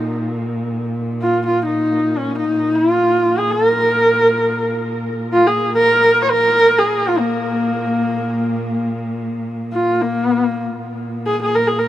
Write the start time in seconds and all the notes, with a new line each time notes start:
Already playing: A#2 D#4
1.22 F4
1.46 F4
1.66 D#4
2.18 C#4
2.39 D#4
2.53 A#2
2.76 F4
3.39 G#4
3.51 A#4
5.33 F4
5.47 G#4
5.76 A#4
6.24 C#5
6.30 A#4
6.66 A#2
6.79 G#4
7.08 F4
7.20 A#3
9.73 F4
10.02 A#3
10.77 A#2
11.26 G#4
11.42 G#4
11.55 A#4
11.68 G#4
11.79 A#4